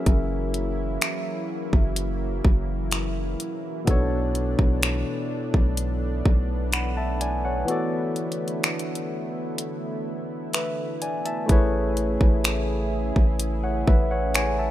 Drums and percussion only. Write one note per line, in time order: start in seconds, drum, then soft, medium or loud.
0.06 kick medium
0.06 closed hi-hat medium
0.54 closed hi-hat medium
1.02 finger snap loud
1.02 closed hi-hat medium
1.73 kick medium
1.96 closed hi-hat medium
2.45 kick loud
2.91 finger snap loud
2.91 closed hi-hat medium
3.40 closed hi-hat medium
3.87 kick loud
3.87 closed hi-hat medium
4.35 closed hi-hat medium
4.59 kick medium
4.83 finger snap loud
4.83 closed hi-hat medium
5.54 kick medium
5.77 closed hi-hat medium
6.25 kick loud
6.72 finger snap loud
6.72 closed hi-hat medium
7.21 closed hi-hat medium
7.68 closed hi-hat medium
8.16 closed hi-hat soft
8.32 closed hi-hat soft
8.48 closed hi-hat soft
8.64 finger snap loud
8.64 closed hi-hat soft
8.79 closed hi-hat soft
8.95 closed hi-hat soft
9.58 closed hi-hat medium
10.53 finger snap loud
10.53 closed hi-hat medium
11.02 closed hi-hat medium
11.26 closed hi-hat medium
11.49 kick loud
11.49 closed hi-hat medium
11.97 closed hi-hat medium
12.21 kick medium
12.44 finger snap loud
12.44 closed hi-hat medium
13.16 kick medium
13.40 closed hi-hat medium
13.87 kick loud
14.34 finger snap loud
14.34 closed hi-hat medium